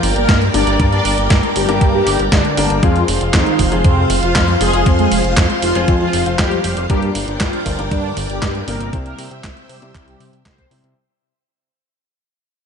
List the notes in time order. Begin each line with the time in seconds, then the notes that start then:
Already playing: G2 G3 A#3 D4 A#4 D5 G5 D6
0.03 G1, open hi-hat
0.16 G1 A#3 A#4, closed hi-hat
0.29 G2, kick, snare, closed hi-hat
0.42 closed hi-hat
0.54 G1 G2 G3 A#3 D4 A#4 D5, open hi-hat
0.67 G1, closed hi-hat
0.80 G2 G3 A#3 D4 A#4, kick, closed hi-hat
0.92 D4 D5, closed hi-hat
1.05 G1, open hi-hat
1.18 G1, closed hi-hat
1.30 G2, kick, snare, closed hi-hat
1.43 closed hi-hat
1.56 G1 G3 G4, open hi-hat
1.69 G1 G2 G3 A#3 D4 A#4, closed hi-hat
1.81 G2, kick, closed hi-hat
1.94 G3 G4
2.07 G1, open hi-hat
2.19 G1, closed hi-hat
2.32 G2 D3 D4, kick, snare, closed hi-hat
2.45 closed hi-hat
2.57 G1 G3 A#3 D4 A#4, open hi-hat
2.70 G1, closed hi-hat
2.83 F2 F3 G#3 C4 F4 G#4 C5 F5 C6, kick, closed hi-hat
2.96 closed hi-hat
3.08 F1, open hi-hat
3.21 F1, closed hi-hat
3.34 F2 D#3 D#4, kick, snare, clap, closed hi-hat
3.46 closed hi-hat
3.59 F1, kick, open hi-hat
3.72 F1 F3 G#3 C4 G#4, closed hi-hat
3.84 F2 C3 C4, kick, closed hi-hat
4.10 F1, open hi-hat
4.23 F1 F3 F4, closed hi-hat
4.35 F2, kick, snare, clap, closed hi-hat
4.48 closed hi-hat
4.61 F1 F3 G#3 C4 G#4, open hi-hat
4.73 F1, closed hi-hat
4.86 F2 F3 G#3 C4 G#4, kick, closed hi-hat
4.99 G#3 G#4, closed hi-hat
5.12 F1, open hi-hat
5.24 F1, closed hi-hat
5.37 F2, kick, snare, clap, closed hi-hat
5.50 closed hi-hat
5.62 F1 F3 F4, open hi-hat
5.75 F1 F3 G#3 C4 G#4, closed hi-hat
5.88 F2, kick, closed hi-hat
6.01 F3 F4
6.13 F1, open hi-hat
6.26 F1 F3 C4 F4, closed hi-hat
6.39 F2 G3 G4, kick, snare, clap, closed hi-hat
6.52 closed hi-hat
6.64 F1, open hi-hat
6.77 F1, closed hi-hat
6.90 G2 G3 A#3 D4 G4 A#4 D5 G5 D6, kick, closed hi-hat
7.02 closed hi-hat
7.15 G1, open hi-hat
7.28 G1, closed hi-hat
7.40 G2 F3 F4, kick, snare, clap, closed hi-hat
7.53 closed hi-hat
7.66 G1, kick, open hi-hat
7.79 G1 G2 G3 A#3 D4 A#4, closed hi-hat
7.91 G2 D3 D4, kick, closed hi-hat
8.17 G1, open hi-hat
8.29 G1 G3 G4, closed hi-hat
8.42 G2, kick, snare, clap, closed hi-hat
8.55 closed hi-hat
8.67 G1 C3 G3 A#3 D4 A#4, open hi-hat
8.80 G1, closed hi-hat
8.93 C2 C3 G3 C4 E4 C5 E5 G5 E6, kick, closed hi-hat
9.06 A#3 A#4, closed hi-hat
9.18 C3, open hi-hat
9.31 C3, closed hi-hat
9.44 C2, kick, snare, clap, closed hi-hat
9.57 closed hi-hat
9.69 C3 G3 G4, open hi-hat
9.82 C3 G3 C4 E4 C5, closed hi-hat
9.95 C2, kick, clap, closed hi-hat
10.07 G3 G4, closed hi-hat
10.20 C3, open hi-hat
10.33 C3, closed hi-hat
10.46 C2 C4 C5, kick, snare, clap, closed hi-hat
10.58 kick, closed hi-hat
10.71 C3 G3 C4 E4 C5, open hi-hat
10.84 C3, closed hi-hat